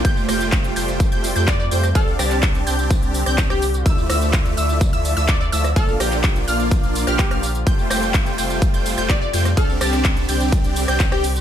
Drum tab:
RD |----------------|----------------|----------------|----------------|
HH |x-oxxxoxxxoxx-ox|x-oxxxoxxxoxx-ox|x-oxxxoxxxoxx-ox|x-oxxxoxxxoxxxox|
TB |xxxxxxxxxxxxxxxx|xxxxxxxxxxxxxxxx|xxxxxxxxxxxxxxxx|xxxxxxxxxxxxxxxx|
CP |----x-------x---|---xx-------x---|----x-------x---|---xx-------x---|
SD |--r------------r|--r--------r-r--|--r------------r|--r--------r-r--|
BD |o---o---o---o---|o---o---o---o---|o---o---o---o---|o---o---o---o---|

RD |--x---x---x---x-|--x---x---x---x-|
HH |x-oxxxoxxxoxx-ox|x-oxxxoxxxoxx-ox|
TB |xxxxxxxxxxxxxxxx|xxxxxxxxxxxxxxxx|
CP |----x-------x---|---xx-------x---|
SD |--r------------r|--r--------r-r--|
BD |o---o---o---o---|o---o---o---o---|